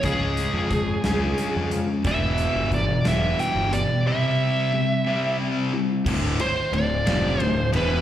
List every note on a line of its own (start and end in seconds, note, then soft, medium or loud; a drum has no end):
0.03 0.45 C#2 medium
0.03 0.69 C#3 medium
0.03 1.72 C#3 medium
0.03 0.69 G#3 medium
0.03 0.69 C#4 medium
0.03 1.68 G#4 medium
0.03 kick loud
0.03 closed hi-hat medium
0.37 0.70 G#3 medium
0.37 closed hi-hat medium
0.54 0.95 F2 medium
0.71 1.01 C#3 medium
0.71 1.38 G#3 medium
0.71 1.02 G#3 medium
0.71 kick medium
0.71 closed hi-hat medium
1.04 1.33 C#2 medium
1.04 1.69 C#3 medium
1.04 1.70 G#3 medium
1.04 1.70 C#4 medium
1.04 2.05 F4 medium
1.04 snare loud
1.04 closed hi-hat medium
1.38 2.05 G#3 medium
1.38 closed hi-hat medium
1.56 1.83 F2 medium
1.71 2.02 C#3 medium
1.71 2.02 G#3 medium
1.71 2.05 C#4 medium
1.71 closed hi-hat medium
2.04 2.46 E1 medium
2.04 2.70 E2 medium
2.04 3.73 E2 medium
2.04 2.70 B2 medium
2.04 2.70 E3 medium
2.04 2.69 E5 medium
2.04 kick loud
2.04 closed hi-hat medium
2.38 4.06 B2 medium
2.38 closed hi-hat medium
2.55 2.97 G1 medium
2.72 3.02 E2 medium
2.72 3.02 B2 medium
2.72 3.38 E3 medium
2.72 3.08 D5 medium
2.72 kick medium
2.72 closed hi-hat medium
3.04 3.33 E1 medium
3.04 3.70 E2 medium
3.04 3.70 B2 medium
3.04 3.70 E3 loud
3.04 4.06 B3 medium
3.04 3.38 E5 medium
3.04 snare loud
3.04 closed hi-hat loud
3.39 4.06 E3 medium
3.39 3.74 G5 loud
3.39 closed hi-hat medium
3.55 3.83 G1 medium
3.72 4.03 E2 medium
3.72 4.03 B2 medium
3.72 4.06 G3 medium
3.72 4.04 D5 loud
3.72 closed hi-hat medium
4.05 5.73 C3 medium
4.05 4.71 C3 medium
4.05 4.71 G3 medium
4.05 4.71 C4 loud
4.05 5.37 E5 medium
4.72 5.03 C3 medium
4.72 5.04 G3 medium
4.72 5.38 C4 medium
5.06 5.71 C3 medium
5.06 5.72 G3 medium
5.06 5.71 C4 medium
5.06 6.07 G4 medium
5.39 6.06 C4 medium
5.73 6.03 C3 medium
5.73 6.04 G3 medium
5.73 6.06 E4 medium
6.06 6.37 D1 medium
6.06 6.39 D2 medium
6.06 6.39 A2 medium
6.06 6.40 D3 loud
6.06 kick loud
6.06 crash loud
6.39 6.75 C5 loud
6.39 muted picked electric bass stroke soft
6.39 muted distorted electric guitar stroke soft
6.39 ride medium
6.72 7.04 D1 medium
6.72 7.00 D2 medium
6.72 7.00 A2 medium
6.72 7.42 D5 loud
6.72 ride medium
7.06 7.38 F1 medium
7.06 7.39 F2 medium
7.06 7.39 C3 loud
7.06 7.39 F3 loud
7.06 snare loud
7.06 ride loud
7.39 7.71 D1 medium
7.39 7.67 D2 medium
7.39 7.67 A2 medium
7.39 7.70 C5 loud
7.39 ride medium
7.73 8.01 E1 loud
7.73 8.01 E2 loud
7.73 8.01 B2 medium
7.73 8.01 E3 loud
7.73 8.01 B4 loud
7.73 ride medium